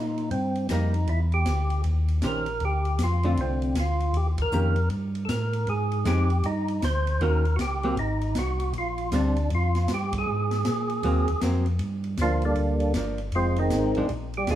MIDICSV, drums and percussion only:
0, 0, Header, 1, 2, 480
1, 0, Start_track
1, 0, Key_signature, -2, "minor"
1, 0, Tempo, 382897
1, 1356, Time_signature, 4, 2, 24, 8
1, 18242, End_track
2, 0, Start_track
2, 0, Title_t, "Drums"
2, 221, Note_on_c, 9, 51, 38
2, 346, Note_off_c, 9, 51, 0
2, 388, Note_on_c, 9, 51, 52
2, 514, Note_off_c, 9, 51, 0
2, 695, Note_on_c, 9, 51, 41
2, 820, Note_off_c, 9, 51, 0
2, 863, Note_on_c, 9, 44, 58
2, 863, Note_on_c, 9, 51, 66
2, 864, Note_on_c, 9, 38, 60
2, 988, Note_off_c, 9, 44, 0
2, 988, Note_off_c, 9, 51, 0
2, 990, Note_off_c, 9, 38, 0
2, 1177, Note_on_c, 9, 51, 44
2, 1302, Note_off_c, 9, 51, 0
2, 1347, Note_on_c, 9, 51, 50
2, 1472, Note_off_c, 9, 51, 0
2, 1653, Note_on_c, 9, 51, 37
2, 1779, Note_off_c, 9, 51, 0
2, 1825, Note_on_c, 9, 44, 49
2, 1825, Note_on_c, 9, 51, 67
2, 1826, Note_on_c, 9, 38, 63
2, 1950, Note_off_c, 9, 44, 0
2, 1950, Note_off_c, 9, 51, 0
2, 1951, Note_off_c, 9, 38, 0
2, 2132, Note_on_c, 9, 51, 44
2, 2257, Note_off_c, 9, 51, 0
2, 2303, Note_on_c, 9, 51, 56
2, 2428, Note_off_c, 9, 51, 0
2, 2612, Note_on_c, 9, 51, 46
2, 2737, Note_off_c, 9, 51, 0
2, 2780, Note_on_c, 9, 44, 54
2, 2780, Note_on_c, 9, 51, 62
2, 2781, Note_on_c, 9, 38, 65
2, 2905, Note_off_c, 9, 44, 0
2, 2905, Note_off_c, 9, 51, 0
2, 2906, Note_off_c, 9, 38, 0
2, 3084, Note_on_c, 9, 51, 43
2, 3210, Note_off_c, 9, 51, 0
2, 3260, Note_on_c, 9, 51, 47
2, 3386, Note_off_c, 9, 51, 0
2, 3573, Note_on_c, 9, 51, 38
2, 3699, Note_off_c, 9, 51, 0
2, 3743, Note_on_c, 9, 44, 59
2, 3743, Note_on_c, 9, 51, 64
2, 3745, Note_on_c, 9, 38, 62
2, 3869, Note_off_c, 9, 44, 0
2, 3869, Note_off_c, 9, 51, 0
2, 3870, Note_off_c, 9, 38, 0
2, 4053, Note_on_c, 9, 51, 43
2, 4178, Note_off_c, 9, 51, 0
2, 4229, Note_on_c, 9, 51, 57
2, 4354, Note_off_c, 9, 51, 0
2, 4537, Note_on_c, 9, 51, 41
2, 4662, Note_off_c, 9, 51, 0
2, 4705, Note_on_c, 9, 44, 48
2, 4705, Note_on_c, 9, 51, 68
2, 4706, Note_on_c, 9, 38, 65
2, 4830, Note_off_c, 9, 44, 0
2, 4830, Note_off_c, 9, 51, 0
2, 4832, Note_off_c, 9, 38, 0
2, 5019, Note_on_c, 9, 51, 43
2, 5145, Note_off_c, 9, 51, 0
2, 5188, Note_on_c, 9, 51, 51
2, 5313, Note_off_c, 9, 51, 0
2, 5490, Note_on_c, 9, 51, 66
2, 5492, Note_on_c, 9, 36, 69
2, 5615, Note_off_c, 9, 51, 0
2, 5618, Note_off_c, 9, 36, 0
2, 5661, Note_on_c, 9, 44, 58
2, 5786, Note_off_c, 9, 44, 0
2, 5964, Note_on_c, 9, 51, 42
2, 6089, Note_off_c, 9, 51, 0
2, 6140, Note_on_c, 9, 51, 53
2, 6265, Note_off_c, 9, 51, 0
2, 6456, Note_on_c, 9, 51, 42
2, 6581, Note_off_c, 9, 51, 0
2, 6629, Note_on_c, 9, 44, 59
2, 6629, Note_on_c, 9, 51, 64
2, 6630, Note_on_c, 9, 38, 68
2, 6754, Note_off_c, 9, 44, 0
2, 6754, Note_off_c, 9, 51, 0
2, 6756, Note_off_c, 9, 38, 0
2, 6935, Note_on_c, 9, 51, 42
2, 7061, Note_off_c, 9, 51, 0
2, 7106, Note_on_c, 9, 51, 49
2, 7231, Note_off_c, 9, 51, 0
2, 7416, Note_on_c, 9, 51, 42
2, 7541, Note_off_c, 9, 51, 0
2, 7587, Note_on_c, 9, 44, 48
2, 7587, Note_on_c, 9, 51, 59
2, 7588, Note_on_c, 9, 38, 63
2, 7713, Note_off_c, 9, 44, 0
2, 7713, Note_off_c, 9, 51, 0
2, 7714, Note_off_c, 9, 38, 0
2, 7897, Note_on_c, 9, 51, 40
2, 8022, Note_off_c, 9, 51, 0
2, 8067, Note_on_c, 9, 51, 57
2, 8193, Note_off_c, 9, 51, 0
2, 8377, Note_on_c, 9, 51, 43
2, 8502, Note_off_c, 9, 51, 0
2, 8553, Note_on_c, 9, 44, 55
2, 8553, Note_on_c, 9, 51, 63
2, 8554, Note_on_c, 9, 38, 66
2, 8678, Note_off_c, 9, 44, 0
2, 8678, Note_off_c, 9, 51, 0
2, 8679, Note_off_c, 9, 38, 0
2, 8863, Note_on_c, 9, 51, 46
2, 8989, Note_off_c, 9, 51, 0
2, 9034, Note_on_c, 9, 51, 47
2, 9160, Note_off_c, 9, 51, 0
2, 9341, Note_on_c, 9, 51, 38
2, 9466, Note_off_c, 9, 51, 0
2, 9513, Note_on_c, 9, 44, 44
2, 9513, Note_on_c, 9, 51, 65
2, 9515, Note_on_c, 9, 38, 61
2, 9639, Note_off_c, 9, 44, 0
2, 9639, Note_off_c, 9, 51, 0
2, 9640, Note_off_c, 9, 38, 0
2, 9818, Note_on_c, 9, 51, 38
2, 9944, Note_off_c, 9, 51, 0
2, 9993, Note_on_c, 9, 51, 53
2, 10118, Note_off_c, 9, 51, 0
2, 10298, Note_on_c, 9, 51, 46
2, 10423, Note_off_c, 9, 51, 0
2, 10467, Note_on_c, 9, 44, 51
2, 10467, Note_on_c, 9, 51, 63
2, 10468, Note_on_c, 9, 38, 68
2, 10592, Note_off_c, 9, 44, 0
2, 10592, Note_off_c, 9, 51, 0
2, 10594, Note_off_c, 9, 38, 0
2, 10777, Note_on_c, 9, 51, 45
2, 10902, Note_off_c, 9, 51, 0
2, 10949, Note_on_c, 9, 51, 56
2, 11075, Note_off_c, 9, 51, 0
2, 11255, Note_on_c, 9, 51, 44
2, 11380, Note_off_c, 9, 51, 0
2, 11429, Note_on_c, 9, 44, 60
2, 11429, Note_on_c, 9, 51, 62
2, 11431, Note_on_c, 9, 38, 61
2, 11555, Note_off_c, 9, 44, 0
2, 11555, Note_off_c, 9, 51, 0
2, 11556, Note_off_c, 9, 38, 0
2, 11740, Note_on_c, 9, 51, 43
2, 11865, Note_off_c, 9, 51, 0
2, 11912, Note_on_c, 9, 51, 52
2, 12037, Note_off_c, 9, 51, 0
2, 12220, Note_on_c, 9, 51, 44
2, 12221, Note_on_c, 9, 38, 36
2, 12345, Note_off_c, 9, 51, 0
2, 12347, Note_off_c, 9, 38, 0
2, 12386, Note_on_c, 9, 44, 54
2, 12386, Note_on_c, 9, 51, 63
2, 12387, Note_on_c, 9, 38, 69
2, 12511, Note_off_c, 9, 44, 0
2, 12511, Note_off_c, 9, 51, 0
2, 12513, Note_off_c, 9, 38, 0
2, 12695, Note_on_c, 9, 51, 69
2, 12697, Note_on_c, 9, 36, 72
2, 12820, Note_off_c, 9, 51, 0
2, 12822, Note_off_c, 9, 36, 0
2, 13176, Note_on_c, 9, 51, 44
2, 13178, Note_on_c, 9, 38, 44
2, 13302, Note_off_c, 9, 51, 0
2, 13303, Note_off_c, 9, 38, 0
2, 13348, Note_on_c, 9, 44, 50
2, 13348, Note_on_c, 9, 51, 65
2, 13350, Note_on_c, 9, 38, 62
2, 13474, Note_off_c, 9, 44, 0
2, 13474, Note_off_c, 9, 51, 0
2, 13475, Note_off_c, 9, 38, 0
2, 13658, Note_on_c, 9, 51, 41
2, 13784, Note_off_c, 9, 51, 0
2, 13829, Note_on_c, 9, 51, 58
2, 13955, Note_off_c, 9, 51, 0
2, 14137, Note_on_c, 9, 51, 49
2, 14263, Note_off_c, 9, 51, 0
2, 14307, Note_on_c, 9, 44, 61
2, 14307, Note_on_c, 9, 51, 63
2, 14309, Note_on_c, 9, 38, 73
2, 14433, Note_off_c, 9, 44, 0
2, 14433, Note_off_c, 9, 51, 0
2, 14434, Note_off_c, 9, 38, 0
2, 14613, Note_on_c, 9, 51, 39
2, 14739, Note_off_c, 9, 51, 0
2, 14781, Note_on_c, 9, 51, 52
2, 14906, Note_off_c, 9, 51, 0
2, 15090, Note_on_c, 9, 51, 39
2, 15215, Note_off_c, 9, 51, 0
2, 15262, Note_on_c, 9, 44, 48
2, 15262, Note_on_c, 9, 51, 58
2, 15263, Note_on_c, 9, 38, 55
2, 15387, Note_off_c, 9, 44, 0
2, 15387, Note_off_c, 9, 51, 0
2, 15389, Note_off_c, 9, 38, 0
2, 15566, Note_on_c, 9, 51, 40
2, 15692, Note_off_c, 9, 51, 0
2, 15739, Note_on_c, 9, 51, 46
2, 15864, Note_off_c, 9, 51, 0
2, 16046, Note_on_c, 9, 51, 42
2, 16172, Note_off_c, 9, 51, 0
2, 16219, Note_on_c, 9, 44, 60
2, 16219, Note_on_c, 9, 51, 61
2, 16221, Note_on_c, 9, 38, 65
2, 16345, Note_off_c, 9, 44, 0
2, 16345, Note_off_c, 9, 51, 0
2, 16346, Note_off_c, 9, 38, 0
2, 16523, Note_on_c, 9, 51, 38
2, 16649, Note_off_c, 9, 51, 0
2, 16696, Note_on_c, 9, 51, 54
2, 16821, Note_off_c, 9, 51, 0
2, 17003, Note_on_c, 9, 51, 45
2, 17128, Note_off_c, 9, 51, 0
2, 17177, Note_on_c, 9, 44, 59
2, 17177, Note_on_c, 9, 51, 53
2, 17178, Note_on_c, 9, 38, 65
2, 17302, Note_off_c, 9, 44, 0
2, 17302, Note_off_c, 9, 51, 0
2, 17303, Note_off_c, 9, 38, 0
2, 17485, Note_on_c, 9, 51, 45
2, 17610, Note_off_c, 9, 51, 0
2, 17660, Note_on_c, 9, 51, 54
2, 17785, Note_off_c, 9, 51, 0
2, 17972, Note_on_c, 9, 51, 44
2, 18097, Note_off_c, 9, 51, 0
2, 18140, Note_on_c, 9, 44, 46
2, 18140, Note_on_c, 9, 51, 63
2, 18142, Note_on_c, 9, 38, 60
2, 18242, Note_off_c, 9, 38, 0
2, 18242, Note_off_c, 9, 44, 0
2, 18242, Note_off_c, 9, 51, 0
2, 18242, End_track
0, 0, End_of_file